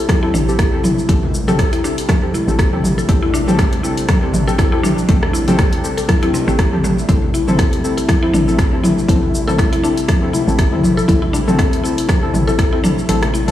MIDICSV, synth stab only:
0, 0, Header, 1, 2, 480
1, 0, Start_track
1, 0, Key_signature, 0, "minor"
1, 0, Tempo, 500000
1, 1045, Time_signature, 4, 2, 24, 8
1, 12972, End_track
2, 0, Start_track
2, 0, Title_t, "Synth stab"
2, 0, Program_c, 0, 62
2, 0, Note_on_c, 0, 60, 78
2, 0, Note_on_c, 0, 67, 70
2, 0, Note_on_c, 0, 69, 82
2, 187, Note_off_c, 0, 60, 0
2, 187, Note_off_c, 0, 67, 0
2, 187, Note_off_c, 0, 69, 0
2, 221, Note_on_c, 0, 67, 75
2, 222, Note_on_c, 0, 60, 86
2, 222, Note_on_c, 0, 69, 90
2, 287, Note_off_c, 0, 67, 0
2, 288, Note_off_c, 0, 60, 0
2, 288, Note_off_c, 0, 69, 0
2, 462, Note_on_c, 0, 60, 75
2, 462, Note_on_c, 0, 69, 83
2, 463, Note_on_c, 0, 67, 73
2, 527, Note_off_c, 0, 60, 0
2, 528, Note_off_c, 0, 67, 0
2, 528, Note_off_c, 0, 69, 0
2, 699, Note_on_c, 0, 60, 85
2, 699, Note_on_c, 0, 69, 91
2, 700, Note_on_c, 0, 67, 81
2, 766, Note_off_c, 0, 60, 0
2, 766, Note_off_c, 0, 69, 0
2, 767, Note_off_c, 0, 67, 0
2, 1046, Note_on_c, 0, 60, 83
2, 1046, Note_on_c, 0, 69, 98
2, 1047, Note_on_c, 0, 67, 79
2, 1129, Note_off_c, 0, 60, 0
2, 1129, Note_off_c, 0, 69, 0
2, 1130, Note_off_c, 0, 67, 0
2, 1418, Note_on_c, 0, 69, 113
2, 1419, Note_on_c, 0, 60, 99
2, 1419, Note_on_c, 0, 67, 89
2, 1739, Note_off_c, 0, 69, 0
2, 1740, Note_off_c, 0, 60, 0
2, 1740, Note_off_c, 0, 67, 0
2, 1765, Note_on_c, 0, 60, 77
2, 1765, Note_on_c, 0, 67, 70
2, 1765, Note_on_c, 0, 69, 85
2, 2106, Note_off_c, 0, 60, 0
2, 2106, Note_off_c, 0, 67, 0
2, 2106, Note_off_c, 0, 69, 0
2, 2139, Note_on_c, 0, 60, 82
2, 2140, Note_on_c, 0, 67, 74
2, 2140, Note_on_c, 0, 69, 91
2, 2206, Note_off_c, 0, 60, 0
2, 2206, Note_off_c, 0, 67, 0
2, 2206, Note_off_c, 0, 69, 0
2, 2377, Note_on_c, 0, 67, 69
2, 2378, Note_on_c, 0, 60, 78
2, 2378, Note_on_c, 0, 69, 88
2, 2445, Note_off_c, 0, 67, 0
2, 2446, Note_off_c, 0, 60, 0
2, 2446, Note_off_c, 0, 69, 0
2, 2617, Note_on_c, 0, 69, 89
2, 2618, Note_on_c, 0, 60, 83
2, 2618, Note_on_c, 0, 67, 75
2, 2685, Note_off_c, 0, 60, 0
2, 2685, Note_off_c, 0, 69, 0
2, 2686, Note_off_c, 0, 67, 0
2, 2963, Note_on_c, 0, 60, 87
2, 2963, Note_on_c, 0, 69, 92
2, 2964, Note_on_c, 0, 67, 78
2, 3048, Note_off_c, 0, 60, 0
2, 3048, Note_off_c, 0, 67, 0
2, 3048, Note_off_c, 0, 69, 0
2, 3336, Note_on_c, 0, 60, 98
2, 3336, Note_on_c, 0, 67, 87
2, 3337, Note_on_c, 0, 69, 111
2, 3658, Note_off_c, 0, 60, 0
2, 3658, Note_off_c, 0, 67, 0
2, 3659, Note_off_c, 0, 69, 0
2, 3683, Note_on_c, 0, 67, 73
2, 3683, Note_on_c, 0, 69, 80
2, 3684, Note_on_c, 0, 60, 78
2, 4025, Note_off_c, 0, 60, 0
2, 4025, Note_off_c, 0, 67, 0
2, 4025, Note_off_c, 0, 69, 0
2, 4056, Note_on_c, 0, 60, 81
2, 4056, Note_on_c, 0, 67, 80
2, 4056, Note_on_c, 0, 69, 95
2, 4124, Note_off_c, 0, 60, 0
2, 4124, Note_off_c, 0, 69, 0
2, 4125, Note_off_c, 0, 67, 0
2, 4297, Note_on_c, 0, 67, 73
2, 4298, Note_on_c, 0, 60, 76
2, 4298, Note_on_c, 0, 69, 88
2, 4365, Note_off_c, 0, 60, 0
2, 4365, Note_off_c, 0, 67, 0
2, 4366, Note_off_c, 0, 69, 0
2, 4534, Note_on_c, 0, 60, 81
2, 4534, Note_on_c, 0, 67, 75
2, 4534, Note_on_c, 0, 69, 90
2, 4604, Note_off_c, 0, 60, 0
2, 4604, Note_off_c, 0, 67, 0
2, 4604, Note_off_c, 0, 69, 0
2, 4882, Note_on_c, 0, 67, 82
2, 4883, Note_on_c, 0, 60, 88
2, 4884, Note_on_c, 0, 69, 97
2, 4968, Note_off_c, 0, 60, 0
2, 4968, Note_off_c, 0, 67, 0
2, 4968, Note_off_c, 0, 69, 0
2, 5257, Note_on_c, 0, 69, 116
2, 5258, Note_on_c, 0, 60, 102
2, 5258, Note_on_c, 0, 67, 92
2, 5579, Note_off_c, 0, 60, 0
2, 5579, Note_off_c, 0, 67, 0
2, 5579, Note_off_c, 0, 69, 0
2, 5605, Note_on_c, 0, 60, 75
2, 5605, Note_on_c, 0, 67, 71
2, 5605, Note_on_c, 0, 69, 86
2, 5946, Note_off_c, 0, 60, 0
2, 5946, Note_off_c, 0, 67, 0
2, 5946, Note_off_c, 0, 69, 0
2, 5978, Note_on_c, 0, 60, 86
2, 5978, Note_on_c, 0, 67, 77
2, 5979, Note_on_c, 0, 69, 94
2, 6046, Note_off_c, 0, 60, 0
2, 6046, Note_off_c, 0, 67, 0
2, 6046, Note_off_c, 0, 69, 0
2, 6216, Note_on_c, 0, 67, 69
2, 6217, Note_on_c, 0, 60, 75
2, 6217, Note_on_c, 0, 69, 86
2, 6285, Note_off_c, 0, 60, 0
2, 6285, Note_off_c, 0, 67, 0
2, 6285, Note_off_c, 0, 69, 0
2, 6459, Note_on_c, 0, 60, 82
2, 6460, Note_on_c, 0, 67, 77
2, 6460, Note_on_c, 0, 69, 93
2, 6526, Note_off_c, 0, 60, 0
2, 6527, Note_off_c, 0, 67, 0
2, 6527, Note_off_c, 0, 69, 0
2, 6803, Note_on_c, 0, 60, 87
2, 6804, Note_on_c, 0, 64, 78
2, 6804, Note_on_c, 0, 69, 99
2, 6888, Note_off_c, 0, 60, 0
2, 6888, Note_off_c, 0, 64, 0
2, 6888, Note_off_c, 0, 69, 0
2, 7179, Note_on_c, 0, 60, 99
2, 7179, Note_on_c, 0, 64, 94
2, 7179, Note_on_c, 0, 69, 111
2, 7500, Note_off_c, 0, 60, 0
2, 7500, Note_off_c, 0, 64, 0
2, 7500, Note_off_c, 0, 69, 0
2, 7525, Note_on_c, 0, 60, 76
2, 7527, Note_on_c, 0, 64, 72
2, 7527, Note_on_c, 0, 69, 82
2, 7866, Note_off_c, 0, 60, 0
2, 7867, Note_off_c, 0, 64, 0
2, 7867, Note_off_c, 0, 69, 0
2, 7897, Note_on_c, 0, 60, 86
2, 7897, Note_on_c, 0, 69, 93
2, 7898, Note_on_c, 0, 64, 81
2, 7965, Note_off_c, 0, 60, 0
2, 7965, Note_off_c, 0, 69, 0
2, 7966, Note_off_c, 0, 64, 0
2, 8138, Note_on_c, 0, 60, 79
2, 8139, Note_on_c, 0, 64, 71
2, 8139, Note_on_c, 0, 69, 86
2, 8206, Note_off_c, 0, 60, 0
2, 8206, Note_off_c, 0, 64, 0
2, 8206, Note_off_c, 0, 69, 0
2, 8377, Note_on_c, 0, 60, 80
2, 8377, Note_on_c, 0, 64, 78
2, 8377, Note_on_c, 0, 69, 90
2, 8445, Note_off_c, 0, 60, 0
2, 8445, Note_off_c, 0, 64, 0
2, 8445, Note_off_c, 0, 69, 0
2, 8724, Note_on_c, 0, 60, 87
2, 8724, Note_on_c, 0, 64, 79
2, 8724, Note_on_c, 0, 69, 96
2, 8808, Note_off_c, 0, 60, 0
2, 8808, Note_off_c, 0, 64, 0
2, 8808, Note_off_c, 0, 69, 0
2, 9096, Note_on_c, 0, 64, 90
2, 9096, Note_on_c, 0, 69, 106
2, 9097, Note_on_c, 0, 60, 100
2, 9418, Note_off_c, 0, 69, 0
2, 9419, Note_off_c, 0, 60, 0
2, 9419, Note_off_c, 0, 64, 0
2, 9445, Note_on_c, 0, 60, 75
2, 9445, Note_on_c, 0, 69, 86
2, 9446, Note_on_c, 0, 64, 74
2, 9786, Note_off_c, 0, 60, 0
2, 9786, Note_off_c, 0, 64, 0
2, 9786, Note_off_c, 0, 69, 0
2, 9817, Note_on_c, 0, 60, 86
2, 9818, Note_on_c, 0, 64, 77
2, 9818, Note_on_c, 0, 69, 93
2, 9885, Note_off_c, 0, 60, 0
2, 9885, Note_off_c, 0, 69, 0
2, 9886, Note_off_c, 0, 64, 0
2, 10057, Note_on_c, 0, 60, 76
2, 10057, Note_on_c, 0, 64, 69
2, 10057, Note_on_c, 0, 69, 86
2, 10125, Note_off_c, 0, 60, 0
2, 10125, Note_off_c, 0, 64, 0
2, 10125, Note_off_c, 0, 69, 0
2, 10296, Note_on_c, 0, 60, 87
2, 10296, Note_on_c, 0, 64, 77
2, 10296, Note_on_c, 0, 69, 94
2, 10364, Note_off_c, 0, 60, 0
2, 10364, Note_off_c, 0, 64, 0
2, 10365, Note_off_c, 0, 69, 0
2, 10645, Note_on_c, 0, 60, 86
2, 10645, Note_on_c, 0, 64, 80
2, 10645, Note_on_c, 0, 69, 95
2, 10729, Note_off_c, 0, 60, 0
2, 10729, Note_off_c, 0, 64, 0
2, 10729, Note_off_c, 0, 69, 0
2, 11016, Note_on_c, 0, 60, 102
2, 11016, Note_on_c, 0, 64, 91
2, 11016, Note_on_c, 0, 69, 114
2, 11338, Note_off_c, 0, 69, 0
2, 11339, Note_off_c, 0, 60, 0
2, 11339, Note_off_c, 0, 64, 0
2, 11363, Note_on_c, 0, 60, 79
2, 11364, Note_on_c, 0, 69, 89
2, 11365, Note_on_c, 0, 64, 69
2, 11705, Note_off_c, 0, 60, 0
2, 11706, Note_off_c, 0, 64, 0
2, 11706, Note_off_c, 0, 69, 0
2, 11735, Note_on_c, 0, 60, 83
2, 11735, Note_on_c, 0, 69, 96
2, 11736, Note_on_c, 0, 64, 79
2, 11804, Note_off_c, 0, 60, 0
2, 11804, Note_off_c, 0, 64, 0
2, 11804, Note_off_c, 0, 69, 0
2, 11976, Note_on_c, 0, 60, 79
2, 11977, Note_on_c, 0, 64, 69
2, 11978, Note_on_c, 0, 69, 83
2, 12045, Note_off_c, 0, 60, 0
2, 12045, Note_off_c, 0, 64, 0
2, 12045, Note_off_c, 0, 69, 0
2, 12216, Note_on_c, 0, 60, 86
2, 12216, Note_on_c, 0, 64, 76
2, 12216, Note_on_c, 0, 69, 98
2, 12284, Note_off_c, 0, 60, 0
2, 12285, Note_off_c, 0, 64, 0
2, 12285, Note_off_c, 0, 69, 0
2, 12563, Note_on_c, 0, 60, 89
2, 12563, Note_on_c, 0, 64, 78
2, 12563, Note_on_c, 0, 69, 96
2, 12648, Note_off_c, 0, 60, 0
2, 12648, Note_off_c, 0, 64, 0
2, 12648, Note_off_c, 0, 69, 0
2, 12936, Note_on_c, 0, 60, 102
2, 12936, Note_on_c, 0, 64, 88
2, 12936, Note_on_c, 0, 69, 110
2, 12972, Note_off_c, 0, 60, 0
2, 12972, Note_off_c, 0, 64, 0
2, 12972, Note_off_c, 0, 69, 0
2, 12972, End_track
0, 0, End_of_file